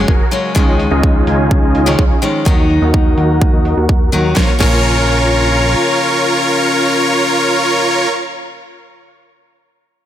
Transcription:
Already playing: steel-string acoustic guitar C#3 F#3 G#3 C#4
0.08 analog synth bass F#1, supersaw synth F#4 G#4 A#4, kick
0.31 steel-string acoustic guitar C#3 F#3 G#3 C#4, open hi-hat
0.55 analog synth bass C#2, steel-string acoustic guitar D#3 F3 G#3 C#4, supersaw synth C#4 D#4 F4 G#4 D#5, kick
0.80 open hi-hat
0.91 analog synth bass C#2, supersaw synth C#4 D#4 F4 G#4 D#5
1.03 kick
1.27 analog synth bass C#2, supersaw synth C#4 D#4 F4 G#4 G#5, open hi-hat
1.51 kick
1.63 analog synth bass C#2, supersaw synth C#4 D#4 F4 G#4 D#5
1.75 open hi-hat
1.86 steel-string acoustic guitar D#3 F3 G#3 C#4
1.99 analog synth bass C#2, supersaw synth C#4 D#4 F4 G#4 C#5, kick
2.22 steel-string acoustic guitar D#3 F3 G#3 C#4, open hi-hat
2.45 analog synth bass D#2, steel-string acoustic guitar D#3 F#3 A#3 D#4, supersaw synth F#4 A#4 D#5, kick
2.70 open hi-hat
2.82 analog synth bass D#2, supersaw synth F#4 A#4 D#5
2.94 kick
3.18 analog synth bass D#2, supersaw synth F#4 A#4 F#5, open hi-hat
3.42 kick
3.53 analog synth bass D#2, supersaw synth F#4 A#4 D#5
3.65 open hi-hat
3.77 analog synth bass D#2, supersaw synth F#4 A#4 F#5
3.89 kick
4.12 analog synth bass D#2, steel-string acoustic guitar D#3 F#3 A#3 D#4, supersaw synth F#4 A#4 F#5, open hi-hat
4.35 analog synth bass A#1, steel-string acoustic guitar C#3 F3 A#3 C#4, supersaw synth F4 A#4 C#5, kick, snare
4.59 analog synth bass A#1, steel-string acoustic guitar C#3 F3 A#3 C#4, supersaw synth F4 A#4 C#5, kick, crash

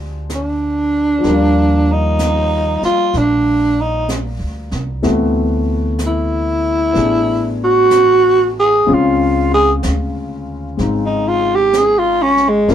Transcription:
Already playing: upright bass D2, upright piano F3 G#3 C4 D4 G4
0.30 brush sweep, snare, hi-hat pedal
0.35 tenor saxophone D4
1.19 upright piano F3 G3
1.24 upright bass D#2, upright piano A#3, brush sweep, snare
1.28 upright piano F4 D5
1.92 tenor saxophone D#4
2.19 brush sweep, snare, hi-hat pedal
2.82 tenor saxophone F4, muted upright bass stroke, snare
3.13 upright bass A#1, tenor saxophone D4, brush sweep, snare
3.81 tenor saxophone D#4
4.09 brush sweep, snare, hi-hat pedal
4.39 upright bass D2
4.71 upright bass C2, snare
5.02 upright bass D2, upright piano E3 A3 B3 C4 F#4, brush sweep, snare
5.99 brush sweep, snare, hi-hat pedal
6.07 tenor saxophone E4
6.93 upright bass A1, upright piano B3 D4 G#4, brush sweep, snare
7.64 tenor saxophone F#4
7.91 brush sweep, snare, hi-hat pedal
8.59 tenor saxophone G#4
8.86 upright bass C#2, upright piano C#3 G#3 C4 C#4 F4, brush sweep
8.93 tenor saxophone F4
9.54 tenor saxophone G#4
9.83 upright bass D2, brush sweep, snare, hi-hat pedal
10.77 upright bass G#1, upright piano G#3 C4 D#4, brush sweep, snare
11.06 tenor saxophone D#4
11.28 tenor saxophone F4
11.55 tenor saxophone G4
11.73 tenor saxophone G#4, brush sweep, snare, hi-hat pedal
11.99 tenor saxophone F4
12.22 tenor saxophone C#4
12.37 snare
12.49 tenor saxophone G#3
12.68 upright bass G1, upright piano F3 G3 A#3 C#4 F4, brush sweep, snare

